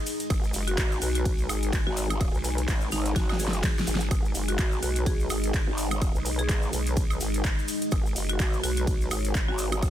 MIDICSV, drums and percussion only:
0, 0, Header, 1, 2, 480
1, 0, Start_track
1, 0, Tempo, 476190
1, 304, Time_signature, 4, 2, 24, 8
1, 9979, End_track
2, 0, Start_track
2, 0, Title_t, "Drums"
2, 65, Note_on_c, 9, 46, 106
2, 66, Note_on_c, 9, 82, 88
2, 166, Note_off_c, 9, 46, 0
2, 167, Note_off_c, 9, 82, 0
2, 202, Note_on_c, 9, 42, 66
2, 208, Note_on_c, 9, 82, 42
2, 302, Note_off_c, 9, 42, 0
2, 304, Note_on_c, 9, 36, 113
2, 306, Note_on_c, 9, 42, 55
2, 306, Note_on_c, 9, 51, 73
2, 306, Note_on_c, 9, 76, 68
2, 309, Note_off_c, 9, 82, 0
2, 312, Note_on_c, 9, 82, 48
2, 405, Note_off_c, 9, 36, 0
2, 407, Note_off_c, 9, 42, 0
2, 407, Note_off_c, 9, 51, 0
2, 407, Note_off_c, 9, 76, 0
2, 413, Note_off_c, 9, 82, 0
2, 439, Note_on_c, 9, 82, 37
2, 540, Note_off_c, 9, 82, 0
2, 540, Note_on_c, 9, 82, 85
2, 545, Note_on_c, 9, 46, 102
2, 641, Note_off_c, 9, 82, 0
2, 646, Note_off_c, 9, 46, 0
2, 681, Note_on_c, 9, 42, 71
2, 682, Note_on_c, 9, 82, 37
2, 782, Note_off_c, 9, 42, 0
2, 783, Note_off_c, 9, 82, 0
2, 783, Note_on_c, 9, 82, 51
2, 784, Note_on_c, 9, 36, 100
2, 785, Note_on_c, 9, 42, 57
2, 785, Note_on_c, 9, 51, 72
2, 789, Note_on_c, 9, 39, 124
2, 884, Note_off_c, 9, 82, 0
2, 885, Note_off_c, 9, 36, 0
2, 886, Note_off_c, 9, 42, 0
2, 886, Note_off_c, 9, 51, 0
2, 890, Note_off_c, 9, 39, 0
2, 924, Note_on_c, 9, 82, 37
2, 1024, Note_off_c, 9, 82, 0
2, 1025, Note_on_c, 9, 46, 105
2, 1026, Note_on_c, 9, 82, 84
2, 1126, Note_off_c, 9, 46, 0
2, 1127, Note_off_c, 9, 82, 0
2, 1160, Note_on_c, 9, 82, 42
2, 1162, Note_on_c, 9, 42, 69
2, 1260, Note_off_c, 9, 82, 0
2, 1262, Note_off_c, 9, 42, 0
2, 1264, Note_on_c, 9, 36, 110
2, 1266, Note_on_c, 9, 42, 56
2, 1266, Note_on_c, 9, 51, 70
2, 1270, Note_on_c, 9, 82, 53
2, 1365, Note_off_c, 9, 36, 0
2, 1367, Note_off_c, 9, 42, 0
2, 1367, Note_off_c, 9, 51, 0
2, 1371, Note_off_c, 9, 82, 0
2, 1393, Note_on_c, 9, 82, 35
2, 1494, Note_off_c, 9, 82, 0
2, 1506, Note_on_c, 9, 46, 99
2, 1506, Note_on_c, 9, 76, 80
2, 1509, Note_on_c, 9, 82, 81
2, 1606, Note_off_c, 9, 46, 0
2, 1606, Note_off_c, 9, 76, 0
2, 1610, Note_off_c, 9, 82, 0
2, 1642, Note_on_c, 9, 42, 69
2, 1643, Note_on_c, 9, 82, 39
2, 1743, Note_off_c, 9, 42, 0
2, 1744, Note_off_c, 9, 82, 0
2, 1744, Note_on_c, 9, 36, 109
2, 1746, Note_on_c, 9, 42, 56
2, 1746, Note_on_c, 9, 51, 71
2, 1748, Note_on_c, 9, 82, 50
2, 1750, Note_on_c, 9, 39, 121
2, 1845, Note_off_c, 9, 36, 0
2, 1846, Note_off_c, 9, 42, 0
2, 1846, Note_off_c, 9, 51, 0
2, 1849, Note_off_c, 9, 82, 0
2, 1850, Note_off_c, 9, 39, 0
2, 1985, Note_on_c, 9, 46, 103
2, 1985, Note_on_c, 9, 82, 88
2, 2086, Note_off_c, 9, 46, 0
2, 2086, Note_off_c, 9, 82, 0
2, 2121, Note_on_c, 9, 42, 68
2, 2121, Note_on_c, 9, 76, 79
2, 2127, Note_on_c, 9, 82, 37
2, 2222, Note_off_c, 9, 42, 0
2, 2222, Note_off_c, 9, 76, 0
2, 2223, Note_off_c, 9, 82, 0
2, 2223, Note_on_c, 9, 82, 50
2, 2224, Note_on_c, 9, 36, 119
2, 2225, Note_on_c, 9, 42, 56
2, 2225, Note_on_c, 9, 51, 73
2, 2225, Note_on_c, 9, 76, 66
2, 2324, Note_off_c, 9, 82, 0
2, 2325, Note_off_c, 9, 36, 0
2, 2325, Note_off_c, 9, 42, 0
2, 2325, Note_off_c, 9, 51, 0
2, 2325, Note_off_c, 9, 76, 0
2, 2362, Note_on_c, 9, 82, 32
2, 2461, Note_off_c, 9, 82, 0
2, 2461, Note_on_c, 9, 82, 83
2, 2464, Note_on_c, 9, 46, 101
2, 2562, Note_off_c, 9, 82, 0
2, 2565, Note_off_c, 9, 46, 0
2, 2600, Note_on_c, 9, 82, 39
2, 2602, Note_on_c, 9, 42, 73
2, 2701, Note_off_c, 9, 82, 0
2, 2703, Note_off_c, 9, 42, 0
2, 2704, Note_on_c, 9, 36, 100
2, 2705, Note_on_c, 9, 42, 60
2, 2705, Note_on_c, 9, 51, 75
2, 2709, Note_on_c, 9, 39, 127
2, 2713, Note_on_c, 9, 82, 50
2, 2804, Note_off_c, 9, 36, 0
2, 2806, Note_off_c, 9, 42, 0
2, 2806, Note_off_c, 9, 51, 0
2, 2810, Note_off_c, 9, 39, 0
2, 2814, Note_off_c, 9, 82, 0
2, 2830, Note_on_c, 9, 82, 39
2, 2931, Note_off_c, 9, 82, 0
2, 2939, Note_on_c, 9, 82, 87
2, 2945, Note_on_c, 9, 46, 105
2, 3040, Note_off_c, 9, 82, 0
2, 3045, Note_off_c, 9, 46, 0
2, 3081, Note_on_c, 9, 42, 71
2, 3085, Note_on_c, 9, 82, 39
2, 3181, Note_off_c, 9, 42, 0
2, 3184, Note_on_c, 9, 36, 112
2, 3185, Note_on_c, 9, 38, 67
2, 3185, Note_on_c, 9, 42, 57
2, 3185, Note_on_c, 9, 51, 68
2, 3186, Note_off_c, 9, 82, 0
2, 3188, Note_on_c, 9, 82, 53
2, 3284, Note_off_c, 9, 36, 0
2, 3285, Note_off_c, 9, 38, 0
2, 3285, Note_off_c, 9, 42, 0
2, 3285, Note_off_c, 9, 51, 0
2, 3289, Note_off_c, 9, 82, 0
2, 3319, Note_on_c, 9, 82, 36
2, 3321, Note_on_c, 9, 76, 78
2, 3345, Note_on_c, 9, 38, 78
2, 3420, Note_off_c, 9, 82, 0
2, 3422, Note_off_c, 9, 76, 0
2, 3422, Note_on_c, 9, 82, 93
2, 3424, Note_on_c, 9, 46, 99
2, 3445, Note_off_c, 9, 38, 0
2, 3504, Note_on_c, 9, 38, 80
2, 3522, Note_off_c, 9, 82, 0
2, 3524, Note_off_c, 9, 46, 0
2, 3560, Note_on_c, 9, 42, 72
2, 3563, Note_on_c, 9, 82, 39
2, 3605, Note_off_c, 9, 38, 0
2, 3661, Note_off_c, 9, 42, 0
2, 3663, Note_on_c, 9, 36, 105
2, 3664, Note_off_c, 9, 82, 0
2, 3664, Note_on_c, 9, 38, 89
2, 3664, Note_on_c, 9, 42, 56
2, 3664, Note_on_c, 9, 51, 71
2, 3666, Note_on_c, 9, 82, 53
2, 3668, Note_on_c, 9, 39, 126
2, 3764, Note_off_c, 9, 36, 0
2, 3765, Note_off_c, 9, 38, 0
2, 3765, Note_off_c, 9, 42, 0
2, 3765, Note_off_c, 9, 51, 0
2, 3766, Note_off_c, 9, 82, 0
2, 3769, Note_off_c, 9, 39, 0
2, 3806, Note_on_c, 9, 82, 33
2, 3823, Note_on_c, 9, 38, 94
2, 3904, Note_off_c, 9, 82, 0
2, 3904, Note_on_c, 9, 46, 105
2, 3904, Note_on_c, 9, 82, 99
2, 3924, Note_off_c, 9, 38, 0
2, 3983, Note_on_c, 9, 38, 110
2, 4004, Note_off_c, 9, 46, 0
2, 4005, Note_off_c, 9, 82, 0
2, 4029, Note_on_c, 9, 82, 39
2, 4040, Note_on_c, 9, 42, 73
2, 4084, Note_off_c, 9, 38, 0
2, 4130, Note_off_c, 9, 82, 0
2, 4140, Note_off_c, 9, 42, 0
2, 4143, Note_on_c, 9, 36, 122
2, 4143, Note_on_c, 9, 42, 55
2, 4143, Note_on_c, 9, 51, 65
2, 4143, Note_on_c, 9, 76, 66
2, 4145, Note_on_c, 9, 82, 58
2, 4244, Note_off_c, 9, 36, 0
2, 4244, Note_off_c, 9, 42, 0
2, 4244, Note_off_c, 9, 51, 0
2, 4244, Note_off_c, 9, 76, 0
2, 4246, Note_off_c, 9, 82, 0
2, 4285, Note_on_c, 9, 82, 33
2, 4383, Note_off_c, 9, 82, 0
2, 4383, Note_on_c, 9, 46, 103
2, 4383, Note_on_c, 9, 82, 95
2, 4484, Note_off_c, 9, 46, 0
2, 4484, Note_off_c, 9, 82, 0
2, 4519, Note_on_c, 9, 42, 72
2, 4522, Note_on_c, 9, 82, 41
2, 4620, Note_off_c, 9, 42, 0
2, 4622, Note_off_c, 9, 82, 0
2, 4622, Note_on_c, 9, 82, 55
2, 4623, Note_on_c, 9, 42, 57
2, 4623, Note_on_c, 9, 51, 74
2, 4624, Note_on_c, 9, 36, 108
2, 4627, Note_on_c, 9, 39, 127
2, 4723, Note_off_c, 9, 82, 0
2, 4724, Note_off_c, 9, 36, 0
2, 4724, Note_off_c, 9, 42, 0
2, 4724, Note_off_c, 9, 51, 0
2, 4728, Note_off_c, 9, 39, 0
2, 4758, Note_on_c, 9, 82, 36
2, 4858, Note_off_c, 9, 82, 0
2, 4864, Note_on_c, 9, 46, 109
2, 4866, Note_on_c, 9, 82, 83
2, 4964, Note_off_c, 9, 46, 0
2, 4967, Note_off_c, 9, 82, 0
2, 5000, Note_on_c, 9, 42, 72
2, 5001, Note_on_c, 9, 82, 42
2, 5101, Note_off_c, 9, 42, 0
2, 5102, Note_off_c, 9, 82, 0
2, 5104, Note_on_c, 9, 36, 119
2, 5104, Note_on_c, 9, 42, 56
2, 5104, Note_on_c, 9, 51, 69
2, 5108, Note_on_c, 9, 82, 51
2, 5204, Note_off_c, 9, 36, 0
2, 5205, Note_off_c, 9, 42, 0
2, 5205, Note_off_c, 9, 51, 0
2, 5208, Note_off_c, 9, 82, 0
2, 5240, Note_on_c, 9, 82, 38
2, 5341, Note_off_c, 9, 82, 0
2, 5341, Note_on_c, 9, 82, 96
2, 5344, Note_on_c, 9, 46, 103
2, 5344, Note_on_c, 9, 76, 75
2, 5442, Note_off_c, 9, 82, 0
2, 5445, Note_off_c, 9, 46, 0
2, 5445, Note_off_c, 9, 76, 0
2, 5480, Note_on_c, 9, 42, 69
2, 5480, Note_on_c, 9, 82, 41
2, 5580, Note_off_c, 9, 82, 0
2, 5581, Note_off_c, 9, 42, 0
2, 5584, Note_on_c, 9, 36, 112
2, 5585, Note_on_c, 9, 42, 58
2, 5585, Note_on_c, 9, 51, 67
2, 5585, Note_on_c, 9, 82, 50
2, 5589, Note_on_c, 9, 39, 126
2, 5684, Note_off_c, 9, 36, 0
2, 5685, Note_off_c, 9, 42, 0
2, 5685, Note_off_c, 9, 51, 0
2, 5686, Note_off_c, 9, 82, 0
2, 5689, Note_off_c, 9, 39, 0
2, 5823, Note_on_c, 9, 82, 90
2, 5824, Note_on_c, 9, 46, 113
2, 5924, Note_off_c, 9, 82, 0
2, 5925, Note_off_c, 9, 46, 0
2, 5960, Note_on_c, 9, 42, 72
2, 5960, Note_on_c, 9, 76, 77
2, 5961, Note_on_c, 9, 82, 44
2, 6061, Note_off_c, 9, 42, 0
2, 6061, Note_off_c, 9, 76, 0
2, 6062, Note_off_c, 9, 82, 0
2, 6064, Note_on_c, 9, 36, 127
2, 6064, Note_on_c, 9, 42, 55
2, 6064, Note_on_c, 9, 51, 64
2, 6064, Note_on_c, 9, 76, 61
2, 6068, Note_on_c, 9, 82, 52
2, 6165, Note_off_c, 9, 36, 0
2, 6165, Note_off_c, 9, 42, 0
2, 6165, Note_off_c, 9, 51, 0
2, 6165, Note_off_c, 9, 76, 0
2, 6169, Note_off_c, 9, 82, 0
2, 6203, Note_on_c, 9, 82, 37
2, 6303, Note_off_c, 9, 82, 0
2, 6304, Note_on_c, 9, 46, 113
2, 6308, Note_on_c, 9, 82, 98
2, 6405, Note_off_c, 9, 46, 0
2, 6409, Note_off_c, 9, 82, 0
2, 6440, Note_on_c, 9, 42, 67
2, 6441, Note_on_c, 9, 82, 38
2, 6541, Note_off_c, 9, 42, 0
2, 6542, Note_off_c, 9, 82, 0
2, 6544, Note_on_c, 9, 36, 107
2, 6545, Note_on_c, 9, 42, 57
2, 6545, Note_on_c, 9, 51, 68
2, 6549, Note_on_c, 9, 39, 127
2, 6550, Note_on_c, 9, 82, 58
2, 6644, Note_off_c, 9, 36, 0
2, 6645, Note_off_c, 9, 42, 0
2, 6645, Note_off_c, 9, 51, 0
2, 6649, Note_off_c, 9, 39, 0
2, 6651, Note_off_c, 9, 82, 0
2, 6676, Note_on_c, 9, 82, 40
2, 6776, Note_off_c, 9, 82, 0
2, 6784, Note_on_c, 9, 46, 106
2, 6785, Note_on_c, 9, 82, 91
2, 6885, Note_off_c, 9, 46, 0
2, 6886, Note_off_c, 9, 82, 0
2, 6921, Note_on_c, 9, 42, 67
2, 6923, Note_on_c, 9, 82, 40
2, 7022, Note_off_c, 9, 42, 0
2, 7023, Note_on_c, 9, 36, 124
2, 7024, Note_off_c, 9, 82, 0
2, 7024, Note_on_c, 9, 42, 56
2, 7024, Note_on_c, 9, 51, 68
2, 7024, Note_on_c, 9, 82, 59
2, 7124, Note_off_c, 9, 36, 0
2, 7124, Note_off_c, 9, 82, 0
2, 7125, Note_off_c, 9, 42, 0
2, 7125, Note_off_c, 9, 51, 0
2, 7161, Note_on_c, 9, 76, 79
2, 7162, Note_on_c, 9, 82, 39
2, 7262, Note_off_c, 9, 76, 0
2, 7263, Note_off_c, 9, 82, 0
2, 7263, Note_on_c, 9, 82, 98
2, 7264, Note_on_c, 9, 46, 108
2, 7364, Note_off_c, 9, 82, 0
2, 7365, Note_off_c, 9, 46, 0
2, 7401, Note_on_c, 9, 42, 69
2, 7404, Note_on_c, 9, 82, 42
2, 7502, Note_off_c, 9, 42, 0
2, 7503, Note_on_c, 9, 36, 115
2, 7504, Note_off_c, 9, 82, 0
2, 7505, Note_on_c, 9, 42, 54
2, 7505, Note_on_c, 9, 51, 67
2, 7505, Note_on_c, 9, 82, 49
2, 7509, Note_on_c, 9, 39, 127
2, 7604, Note_off_c, 9, 36, 0
2, 7606, Note_off_c, 9, 42, 0
2, 7606, Note_off_c, 9, 51, 0
2, 7606, Note_off_c, 9, 82, 0
2, 7610, Note_off_c, 9, 39, 0
2, 7649, Note_on_c, 9, 82, 37
2, 7743, Note_off_c, 9, 82, 0
2, 7743, Note_on_c, 9, 82, 104
2, 7744, Note_on_c, 9, 46, 116
2, 7844, Note_off_c, 9, 82, 0
2, 7845, Note_off_c, 9, 46, 0
2, 7882, Note_on_c, 9, 42, 68
2, 7882, Note_on_c, 9, 82, 38
2, 7976, Note_off_c, 9, 82, 0
2, 7976, Note_on_c, 9, 82, 56
2, 7982, Note_off_c, 9, 42, 0
2, 7983, Note_on_c, 9, 36, 124
2, 7985, Note_on_c, 9, 42, 52
2, 7985, Note_on_c, 9, 51, 64
2, 7985, Note_on_c, 9, 76, 68
2, 8077, Note_off_c, 9, 82, 0
2, 8084, Note_off_c, 9, 36, 0
2, 8086, Note_off_c, 9, 42, 0
2, 8086, Note_off_c, 9, 51, 0
2, 8086, Note_off_c, 9, 76, 0
2, 8124, Note_on_c, 9, 82, 37
2, 8224, Note_on_c, 9, 46, 109
2, 8225, Note_off_c, 9, 82, 0
2, 8228, Note_on_c, 9, 82, 102
2, 8325, Note_off_c, 9, 46, 0
2, 8329, Note_off_c, 9, 82, 0
2, 8359, Note_on_c, 9, 82, 41
2, 8360, Note_on_c, 9, 42, 66
2, 8458, Note_off_c, 9, 82, 0
2, 8458, Note_on_c, 9, 82, 55
2, 8461, Note_off_c, 9, 42, 0
2, 8463, Note_on_c, 9, 36, 112
2, 8465, Note_on_c, 9, 42, 54
2, 8465, Note_on_c, 9, 51, 71
2, 8469, Note_on_c, 9, 39, 127
2, 8559, Note_off_c, 9, 82, 0
2, 8564, Note_off_c, 9, 36, 0
2, 8566, Note_off_c, 9, 42, 0
2, 8566, Note_off_c, 9, 51, 0
2, 8570, Note_off_c, 9, 39, 0
2, 8601, Note_on_c, 9, 82, 42
2, 8702, Note_off_c, 9, 82, 0
2, 8705, Note_on_c, 9, 46, 112
2, 8711, Note_on_c, 9, 82, 88
2, 8806, Note_off_c, 9, 46, 0
2, 8812, Note_off_c, 9, 82, 0
2, 8841, Note_on_c, 9, 42, 66
2, 8842, Note_on_c, 9, 82, 41
2, 8942, Note_off_c, 9, 42, 0
2, 8943, Note_off_c, 9, 82, 0
2, 8944, Note_on_c, 9, 36, 123
2, 8945, Note_on_c, 9, 42, 55
2, 8945, Note_on_c, 9, 51, 66
2, 8947, Note_on_c, 9, 82, 60
2, 9044, Note_off_c, 9, 36, 0
2, 9045, Note_off_c, 9, 42, 0
2, 9045, Note_off_c, 9, 51, 0
2, 9048, Note_off_c, 9, 82, 0
2, 9083, Note_on_c, 9, 82, 37
2, 9183, Note_off_c, 9, 82, 0
2, 9183, Note_on_c, 9, 82, 93
2, 9184, Note_on_c, 9, 46, 108
2, 9184, Note_on_c, 9, 76, 79
2, 9284, Note_off_c, 9, 82, 0
2, 9285, Note_off_c, 9, 46, 0
2, 9285, Note_off_c, 9, 76, 0
2, 9320, Note_on_c, 9, 42, 66
2, 9325, Note_on_c, 9, 82, 41
2, 9421, Note_off_c, 9, 42, 0
2, 9424, Note_on_c, 9, 36, 117
2, 9424, Note_on_c, 9, 42, 51
2, 9424, Note_on_c, 9, 51, 63
2, 9425, Note_off_c, 9, 82, 0
2, 9427, Note_on_c, 9, 82, 57
2, 9428, Note_on_c, 9, 39, 124
2, 9524, Note_off_c, 9, 36, 0
2, 9525, Note_off_c, 9, 42, 0
2, 9525, Note_off_c, 9, 51, 0
2, 9527, Note_off_c, 9, 82, 0
2, 9529, Note_off_c, 9, 39, 0
2, 9659, Note_on_c, 9, 82, 96
2, 9664, Note_on_c, 9, 46, 115
2, 9760, Note_off_c, 9, 82, 0
2, 9765, Note_off_c, 9, 46, 0
2, 9801, Note_on_c, 9, 42, 66
2, 9801, Note_on_c, 9, 76, 81
2, 9806, Note_on_c, 9, 82, 40
2, 9901, Note_off_c, 9, 42, 0
2, 9901, Note_off_c, 9, 76, 0
2, 9904, Note_on_c, 9, 36, 126
2, 9904, Note_on_c, 9, 42, 52
2, 9904, Note_on_c, 9, 51, 69
2, 9904, Note_on_c, 9, 76, 70
2, 9906, Note_off_c, 9, 82, 0
2, 9906, Note_on_c, 9, 82, 58
2, 9979, Note_off_c, 9, 36, 0
2, 9979, Note_off_c, 9, 42, 0
2, 9979, Note_off_c, 9, 51, 0
2, 9979, Note_off_c, 9, 76, 0
2, 9979, Note_off_c, 9, 82, 0
2, 9979, End_track
0, 0, End_of_file